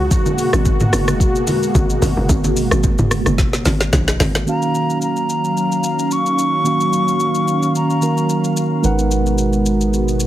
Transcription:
Already playing: F#4
0.11 B2 G#3 A#3, kick, low conga, shaker
0.26 high conga, shaker
0.38 open hi-hat, shaker
0.53 G#1, cross-stick, shaker
0.65 kick, low conga, shaker
0.80 mid tom, high conga, shaker
0.93 F#1, cross-stick, open hi-hat, shaker
1.08 cross-stick, high conga, shaker
1.20 kick, shaker
1.35 shaker
1.47 open hi-hat, high conga, shaker
1.63 shaker
1.75 G#1, kick, high conga, shaker
1.90 shaker
2.02 G#1, open hi-hat, high conga, low conga, shaker
2.17 F#1
2.29 G#1, kick, low conga, shaker
2.44 high conga, shaker
2.57 open hi-hat, shaker
2.71 G#1, cross-stick, shaker
2.83 kick, low conga, shaker
2.98 F#1, mid tom, high conga, shaker
3.11 cross-stick, open hi-hat, shaker
3.26 F#1, cross-stick, high conga, shaker
3.38 kick, snare, shaker
3.53 snare, shaker
3.65 G#1, snare, open hi-hat, high conga, shaker
3.81 snare, shaker
3.93 A#1, kick, snare, high conga, low conga, shaker
4.08 snare, shaker
4.20 G#1, snare, open hi-hat, high conga, low conga, shaker
4.35 snare
4.46 D#3 F#3 A#3 C#4 F#4 F5 A#5, shaker
4.62 shaker
4.75 shaker
4.90 shaker
5.02 A#5, shaker
5.16 shaker
5.29 shaker
5.44 shaker
5.57 shaker
5.72 shaker
5.84 shaker
5.99 shaker
6.11 C#6, shaker
6.26 shaker
6.39 shaker
6.64 D#3 A#3 C#4 F#4 F5, shaker
6.80 shaker
6.93 shaker
7.08 shaker
7.20 shaker
7.35 shaker
7.48 shaker
7.63 shaker
7.75 A#5, shaker
7.90 shaker
8.01 D#3 A#3 C#4 F#4 A#4, shaker
8.17 shaker
8.29 shaker
8.44 shaker
8.57 shaker
8.82 G#1 B2 G#3 B3 D#4 F#4 A#4 B4 F#5, shaker
8.99 shaker
9.11 shaker
9.26 shaker
9.38 shaker
9.53 shaker
9.66 shaker
9.81 shaker
9.93 shaker
10.08 shaker
10.20 shaker

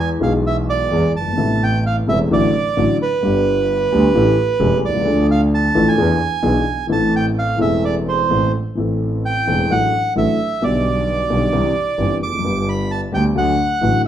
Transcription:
Already playing: E2 E3 G#3 B3 G#4
0.19 B1 B2 E3 G#3 B3 F5
0.23 G#4
0.47 E5
0.69 D5
0.91 E2 E3 G#3 B3 G#4
1.15 G1 A5
1.21 F#1
1.27 G1
1.32 G#1 C3
1.37 A1 A2 A3 B3 E4
1.63 G5
1.86 F5
2.07 E1 E2 C3 A3 B3 E4 E5
2.31 A1 A2 D3 F#3 A3 F#4 D5
2.76 A1 A2 D3 F#3 A3 F#4
3.02 B4
3.21 G1 G2 D3 G3 B3 G4
3.92 D2 D3 G3 B3 G4
4.14 A1 A2 E3 A3 C#4 G4
4.60 E1 E2 E3 A3 C#4 G4
4.83 C2 D5
4.89 B1
4.94 C2
5.00 C#2 F3
5.04 D2 D3 A3 D4 A4
5.31 F5
5.54 A5
5.74 A1 A2 F3 A3 D4 A4
5.88 G#5
5.97 E2 E3 B3 D4 G#4
6.42 B1 B2 E3 B3 D4 G#4
6.87 A1 A2 E3 A3 C4 A4
6.92 A5
7.16 G5
7.39 F5
7.57 E1 E2 E3 A3 C4
7.61 A4 E5
7.85 D5
8.08 C5
8.30 A1 A2 E3 A3 C4 A4
8.75 A1 A2 E3 A3 C4 A4
9.25 G5
9.47 E1 E2 E3 A3 C4 A4
9.70 A1 A2 F#3 A3 D4 A4 F#5
10.15 A1 A2 F#3 A3 D4 A4 E5
10.60 B1 B2 D3 G3 B3 G4 D5
11.30 B1 B2 D3 G3 B3 G4
11.53 C2 C3 E3 G3 C4 G4
11.98 G1 G2 E3 G3 C4 G4
12.22 F1 D6
12.27 E2
12.33 F2
12.39 F#2 D3
12.44 G1 G2 G3 B3 G4
12.69 B5
12.91 A5
13.12 D2 D3 G3 B3 G4 G5
13.35 D2 D3 F#3 A3 F#4 F#5
13.81 A1 A2 D3 F#3 A3 F#4

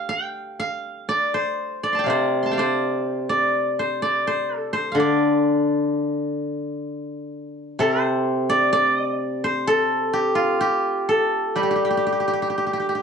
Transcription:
Already playing: G4 C5 D5 F5
0.09 G5
0.60 F5
1.09 D5
1.34 C5
1.83 D5
1.93 A5 C6
1.99 G5
2.04 C3 F5
2.08 C5 D5
2.43 A5 C6
2.51 F5 G5
2.58 C5 D5
3.29 D5
3.79 C5
4.02 D5
4.27 C5
4.57 A4
4.73 C5
4.92 D3 F5
5.00 D5
7.79 C3 A4
8.01 C5
8.50 D5
8.73 D5
9.44 C5
9.67 A4
10.13 G4
10.35 F4
10.61 G4
11.09 A4
11.56 G3 G4
11.63 G4
11.71 G4
11.76 G4
11.85 G4
11.90 G4
11.97 G4
12.06 G4
12.12 G4
12.20 G4
12.28 G4
12.33 G4
12.42 G4
12.50 G4
12.58 G4
12.67 G4
12.73 G4
12.80 G4
12.89 G4
12.95 G4

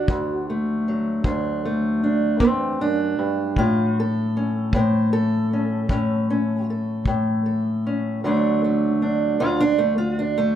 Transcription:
Already playing: D4 F#4
0.08 D2, kick
0.50 A3
0.88 F#3
1.24 D2 D4, kick
1.65 A3
2.03 D4
2.40 E2 C4, kick
2.81 F#2 D4
3.19 G2
3.56 A2 F4, kick
4.00 A4
4.37 C#4
4.73 A2 C5, kick
5.13 A4
5.53 C#4
5.89 A2 C#4, kick
6.30 C#4
6.70 A4
7.05 A2, kick
7.46 A4
7.87 C#4
8.24 D2 D3 F#3 A3 D4
8.64 A3
9.02 D4
9.40 D2 F4
9.60 D4
9.78 A3
9.98 F4
10.19 D4
10.38 A3

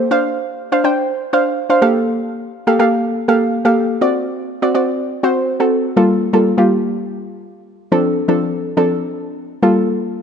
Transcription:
0.11 D4 C5 F5
0.72 D4 C5 F5
0.84 D4 C5 G5
1.33 D4 C5 F5
1.70 D4 C5 F5
1.82 A#3 G4 A4 F5
2.67 A#3 G4 A4 F5
2.79 A#3 G4 A4 F5
3.28 A#3 G4 A4 F5
3.65 A#3 G4 A4 F5
4.01 C4 F#4 D5
4.62 C4 F#4 D5
4.75 C4 F#4 D5
5.23 C4 F#4 C5
5.60 C4 F#4 A4
5.96 G3 A#3 F4 A4
6.33 G3 A#3 F4 A4
6.58 G3 A#3 F4 G4
7.92 F3 C4 D4 A4
8.28 F3 C4 D4 A4
8.77 F3 C4 D4 A4
9.62 G3 A#3 F4 A4

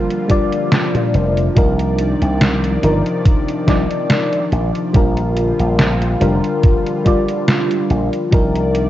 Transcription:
Already playing: D3 F3 G3 A#3 D4 F4 A#4
0.10 closed hi-hat
0.28 G3 D4 F4 D5, kick, closed hi-hat
0.52 closed hi-hat
0.72 snare, closed hi-hat
0.95 A#2, closed hi-hat
1.14 F1, closed hi-hat
1.37 closed hi-hat
1.55 C2 C3 D#3 F3 D4 D#4 A#4 D5, kick, closed hi-hat
1.79 closed hi-hat
1.98 closed hi-hat
2.22 C2, closed hi-hat
2.41 snare, closed hi-hat
2.64 closed hi-hat
2.82 G1 F3 D4 D#4 A#4, closed hi-hat
3.06 closed hi-hat
3.25 kick, closed hi-hat
3.48 closed hi-hat
3.66 C2 F3 D4 D#4 D5, kick, snare, closed hi-hat
3.91 closed hi-hat
4.10 snare, closed hi-hat
4.33 closed hi-hat
4.52 A#1, closed hi-hat
4.75 closed hi-hat
4.93 A#1 D3 G3 D4 F4 A#4, kick, closed hi-hat
5.17 closed hi-hat
5.37 closed hi-hat
5.59 A#1, closed hi-hat
5.79 snare, closed hi-hat
6.02 closed hi-hat
6.20 F1 G3 D4 F4 A#4, closed hi-hat
6.44 closed hi-hat
6.63 kick, closed hi-hat
6.86 closed hi-hat
7.04 G3 D4 F4 D5, kick, closed hi-hat
7.29 closed hi-hat
7.48 snare, closed hi-hat
7.71 closed hi-hat
7.90 A#1, closed hi-hat
8.13 closed hi-hat
8.31 C2 C3 D#3 F3 A#3 D4 D#4 A#4 D5, kick, closed hi-hat
8.55 closed hi-hat
8.75 closed hi-hat

